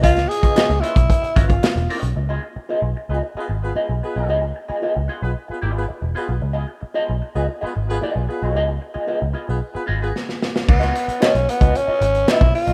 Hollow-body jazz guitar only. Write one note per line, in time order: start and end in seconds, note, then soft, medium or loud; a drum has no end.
0.01 0.17 C#4 medium
0.01 0.15 F4 loud
0.01 0.15 B4 medium
0.01 0.15 D#5 medium
0.16 muted hollow-body jazz guitar stroke medium
0.28 muted hollow-body jazz guitar stroke soft
0.42 0.54 C#4 medium
0.42 0.55 F4 medium
0.42 0.54 B4 medium
0.42 0.54 D#5 medium
0.56 0.71 C#4 medium
0.56 0.69 F4 medium
0.56 0.69 B4 medium
0.56 0.68 D#5 medium
0.69 muted hollow-body jazz guitar stroke medium
0.82 0.94 C#4 medium
0.82 0.94 F4 medium
0.82 0.95 B4 medium
0.82 0.95 D#5 medium
0.96 muted hollow-body jazz guitar stroke medium
1.22 muted hollow-body jazz guitar stroke medium
1.36 1.51 C#4 medium
1.36 1.49 F4 medium
1.36 1.48 B4 loud
1.36 1.48 D#5 medium
1.49 muted hollow-body jazz guitar stroke medium
1.62 muted hollow-body jazz guitar stroke soft
1.76 muted hollow-body jazz guitar stroke medium
1.90 2.10 C#4 medium
1.90 2.02 F4 medium
1.90 2.02 B4 medium
1.90 2.01 D#5 medium
2.02 muted hollow-body jazz guitar stroke soft
2.16 muted hollow-body jazz guitar stroke soft
2.29 2.41 B3 medium
2.29 2.42 F4 medium
2.29 2.42 G#4 medium
2.29 2.43 D#5 medium
2.43 muted hollow-body jazz guitar stroke soft
2.56 muted hollow-body jazz guitar stroke soft
2.69 2.84 B3 medium
2.69 2.84 F4 medium
2.69 2.84 G#4 medium
2.69 2.85 D#5 medium
2.96 muted hollow-body jazz guitar stroke soft
3.10 3.22 B3 soft
3.10 3.21 F4 medium
3.10 3.21 G#4 medium
3.10 3.21 D#5 medium
3.22 muted hollow-body jazz guitar stroke soft
3.37 3.48 B3 medium
3.37 3.49 F4 medium
3.37 3.49 G#4 medium
3.37 3.50 D#5 medium
3.50 muted hollow-body jazz guitar stroke soft
3.62 muted hollow-body jazz guitar stroke soft
3.75 3.90 B3 medium
3.75 3.91 F4 medium
3.75 3.91 G#4 medium
3.75 3.91 D#5 medium
4.03 muted hollow-body jazz guitar stroke soft
4.16 4.27 B3 soft
4.16 4.28 F4 soft
4.16 4.28 G#4 soft
4.16 4.27 D#5 medium
4.28 4.44 B3 medium
4.28 4.42 F4 medium
4.28 4.41 G#4 medium
4.28 4.41 D#5 medium
4.42 muted hollow-body jazz guitar stroke soft
4.55 muted hollow-body jazz guitar stroke soft
4.68 4.81 B3 soft
4.68 4.81 F4 medium
4.68 4.81 G#4 medium
4.68 4.81 D#5 medium
4.82 4.97 B3 medium
4.82 4.95 F4 medium
4.82 4.95 G#4 medium
4.82 4.94 D#5 medium
4.96 muted hollow-body jazz guitar stroke soft
5.08 5.20 B3 medium
5.08 5.21 F4 medium
5.08 5.21 G#4 medium
5.08 5.20 D#5 medium
5.21 muted hollow-body jazz guitar stroke soft
5.48 muted hollow-body jazz guitar stroke soft
5.61 5.82 B3 medium
5.61 5.74 F4 medium
5.61 5.75 G#4 medium
5.61 5.74 D#5 medium
5.75 muted hollow-body jazz guitar stroke soft
5.88 muted hollow-body jazz guitar stroke soft
6.02 muted hollow-body jazz guitar stroke soft
6.15 6.30 B3 medium
6.15 6.28 F4 medium
6.15 6.27 G#4 medium
6.15 6.27 D#5 medium
6.28 muted hollow-body jazz guitar stroke soft
6.41 muted hollow-body jazz guitar stroke soft
6.53 6.66 B3 medium
6.53 6.67 F4 medium
6.53 6.67 G#4 medium
6.53 6.67 D#5 medium
6.68 muted hollow-body jazz guitar stroke soft
6.80 muted hollow-body jazz guitar stroke soft
6.94 7.10 B3 medium
6.94 7.10 F4 medium
6.94 7.10 G#4 medium
6.94 7.11 D#5 medium
7.22 muted hollow-body jazz guitar stroke soft
7.36 7.47 B3 medium
7.36 7.47 F4 medium
7.36 7.47 G#4 medium
7.36 7.47 D#5 medium
7.48 muted hollow-body jazz guitar stroke soft
7.61 7.74 B3 medium
7.61 7.74 F4 medium
7.61 7.74 G#4 medium
7.61 7.74 D#5 medium
7.75 muted hollow-body jazz guitar stroke soft
7.87 muted hollow-body jazz guitar stroke soft
8.01 8.22 B3 medium
8.01 8.22 F4 medium
8.01 8.23 G#4 medium
8.01 8.23 D#5 medium
8.29 muted hollow-body jazz guitar stroke soft
8.43 8.54 B3 soft
8.43 8.54 F4 medium
8.43 8.55 G#4 medium
8.43 8.55 D#5 medium
8.55 8.70 B3 medium
8.55 8.68 F4 medium
8.55 8.68 G#4 medium
8.55 8.67 D#5 medium
8.68 muted hollow-body jazz guitar stroke medium
8.82 muted hollow-body jazz guitar stroke soft
8.94 9.06 B3 medium
8.94 9.06 F4 medium
8.94 9.07 G#4 soft
8.94 9.07 D#5 medium
9.07 9.23 B3 medium
9.07 9.20 F4 medium
9.07 9.20 G#4 medium
9.07 9.19 D#5 medium
9.20 muted hollow-body jazz guitar stroke soft
9.33 9.46 B3 medium
9.33 9.46 F4 medium
9.33 9.46 G#4 medium
9.33 9.46 D#5 medium
9.47 muted hollow-body jazz guitar stroke soft
9.74 muted hollow-body jazz guitar stroke soft
9.86 10.02 B3 medium
9.86 10.00 F4 medium
9.86 10.00 G#4 medium
9.86 9.99 D#5 medium
10.00 muted hollow-body jazz guitar stroke medium
10.67 muted hollow-body jazz guitar stroke soft
10.80 10.93 C#4 medium
10.80 10.93 F4 medium
10.80 10.93 B4 medium
10.80 10.94 D#5 medium
10.94 muted hollow-body jazz guitar stroke medium
11.08 muted hollow-body jazz guitar stroke soft
11.20 11.36 C#4 medium
11.20 11.36 F4 medium
11.20 11.36 B4 medium
11.20 11.37 D#5 medium
11.48 muted hollow-body jazz guitar stroke soft
11.60 11.73 C#4 medium
11.60 11.73 F4 medium
11.60 11.73 B4 medium
11.60 11.73 D#5 medium
11.75 muted hollow-body jazz guitar stroke soft
11.87 12.01 C#4 medium
11.87 12.01 F4 medium
11.87 12.01 B4 medium
11.87 12.01 D#5 medium
12.02 muted hollow-body jazz guitar stroke soft
12.15 muted hollow-body jazz guitar stroke soft
12.28 12.43 C#4 medium
12.28 12.43 F4 medium
12.28 12.43 B4 medium
12.28 12.44 D#5 medium
12.54 muted hollow-body jazz guitar stroke soft
12.66 12.73 C#4 soft
12.66 12.73 F4 medium
12.66 12.73 B4 medium
12.66 12.73 D#5 medium